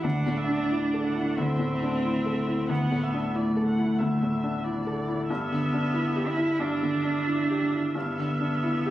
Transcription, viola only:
0.03 F#5
0.37 E5
0.70 D5
1.04 F#5
1.38 E5
2.03 E5
2.70 F#5
3.03 E5
3.36 D5
3.67 F#5
3.99 E5
4.64 D5
5.29 E5
6.59 E5
7.95 E5

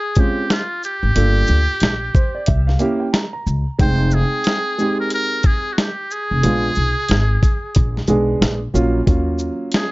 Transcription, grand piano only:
0.17 G#3 C4 C#4 F4
1.15 A#3 D4 F4 A4
2.14 C5
2.35 D5
2.47 E5
2.67 F5
2.79 A#3 C#4 E4 G4
3.00 G5
3.13 A#5
3.33 A#5
3.79 G#3 C4 D#4 G5
4.78 G#3 C4 D#4 G4
6.43 G#3 B3 D4 F4
8.08 G#3 B3 D4 G#4
8.74 F#3 A#3 C#4 F4
9.06 F#3 A#3 C#4 F4

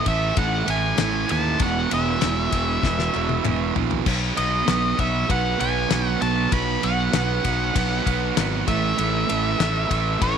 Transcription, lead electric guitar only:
0.08 E5
0.39 F#5
0.70 G#5
1.31 A5
1.63 F#5
1.94 E5
4.37 D#5
5.00 E5
5.31 F#5
5.60 G#5
6.09 F#5
6.22 A5
6.53 B5
6.84 F#5
8.68 E5
10.22 C#5

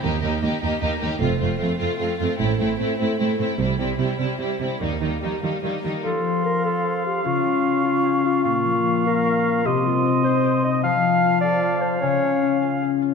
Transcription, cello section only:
0.04 D#2
0.23 D#2
0.43 D#2
0.63 D#2
0.82 D#2
1.02 D#2
1.22 F2
1.41 F2
1.61 F2
1.81 F2
2.00 F2
2.20 F2
2.40 A2
2.60 A2
2.80 A2
3.00 A2
3.20 A2
3.39 A2
3.59 C3
3.78 C3
3.98 C3
4.18 C3
4.38 C3
4.59 C3
4.80 D#3
5.00 D#3
5.22 D#3
5.42 D#3
5.63 D#3
5.84 D#3

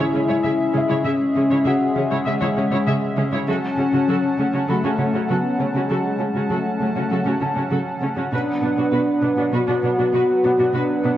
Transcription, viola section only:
0.14 C#4 G#4
0.29 E4 C#5
0.44 G#4 E5
0.74 C#4 G#4
0.90 E4 C#5
1.05 G#4 E5
1.35 C#4 G#4
1.51 E4 C#5
1.65 G#4 E5
1.96 C#4 G#4
2.11 E4 C#5
2.26 G#4 E5
2.41 E4 C#5
2.57 C#4 G#4
2.72 E4 C#5
2.87 G#4 E5
3.17 C#4 G#4
3.33 E4 C#5
3.48 F#4 A4
3.79 A3 C#4
3.93 C#4 F#4
4.08 F#4 A4
4.39 A3 C#4
4.54 C#4 F#4
4.69 F#4 A4
4.84 C#4 F#4
4.99 A3 C#4
5.14 C#4 F#4
5.30 F#4 A4
5.60 A3 C#4
5.75 C#4 F#4
5.90 F#4 A4
6.21 A3 C#4
6.36 C#4 F#4
6.51 F#4 A4
6.82 A3 C#4
6.96 C#4 F#4
7.11 F#4 A4
7.26 C#4 F#4
7.41 A3 C#4
7.57 C#4 F#4
7.71 F#4 A4
8.02 A3 C#4
8.17 C#4 F#4
8.33 F#4 B4
8.63 B3 D4
8.78 D4 F#4
8.92 F#4 B4
9.23 B3 D4
9.38 D4 F#4
9.53 F#4 B4
9.68 D4 F#4
9.84 B3 D4
9.99 D4 F#4
10.13 F#4 B4
10.44 B3 D4
10.59 D4 F#4
10.74 F#4 B4
11.04 B3 D4

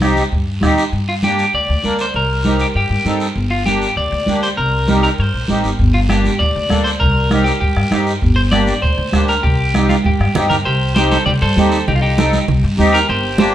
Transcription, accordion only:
0.01 C4 D#4 G4
0.61 C4 D#4 G4
1.23 A#3 D4 G4
1.83 A#3 D4 A#4
2.44 C4 D#4 G4
3.05 C4 D#4 A4
3.66 A#3 D4 G4
4.28 A#3 D4 G4
4.88 C4 D#4 G4
5.49 C4 D#4 G4
6.09 A#3 D4 G4
6.69 A#3 D4 A4
7.30 C4 D#4 G4
7.91 C4 D#4 G4
8.52 A#3 D4 G4
9.12 A#3 D4 G4
9.74 C4 D#4 G4
10.35 C4 D#4 G4
10.95 C4 D#4 G4
11.56 C4 D#4 G4
12.17 C4 D#4 A4
12.77 C4 D#4 G4
13.39 A#3 D4 G4

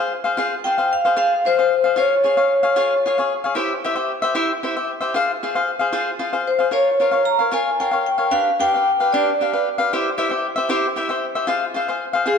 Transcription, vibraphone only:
0.64 G5
0.93 F5
1.18 F5
1.46 C5
1.99 C#5
6.47 C5
6.73 C#5
7.25 A#5
7.54 G#5
7.80 G5
8.06 G5
8.31 F5
8.60 G5
9.13 D5
12.27 G#4

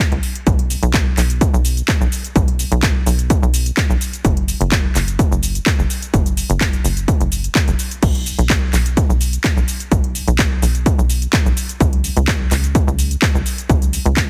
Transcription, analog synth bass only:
0.12 C#2
0.47 B1
0.83 B1
1.17 B1
1.54 B1
2.01 B1
2.36 B1
2.72 B1
3.06 B1
3.42 B1
3.90 B1
4.25 F#1
4.61 F#1
4.95 F#1
5.31 F#1
5.79 F#1
6.14 F#1
6.50 F#1
6.84 F#1
7.20 F#1
7.68 F#1
8.03 B1
8.38 B1
8.73 B1
9.09 B1
9.57 B1
9.92 B1
10.28 B1
10.62 B1
10.98 B1
11.46 B1
11.80 C#2
12.17 C#2
12.51 C#2
12.87 C#2
13.35 C#2
13.69 C#2
14.05 C#2

